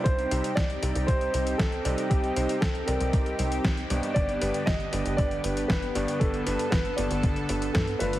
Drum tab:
HH |xxxxxxxxxxxxxxxx|xxxxxxxxxxxxxxxx|xxxxxxxxxxxxxxxx|xxxxxxxxxxxxxxxx|
SD |----o-------o---|----o-------o---|----o-------o---|----o-------o---|
BD |o---o---o---o---|o---o---o---o---|o---o---o---o---|o---o---o---o---|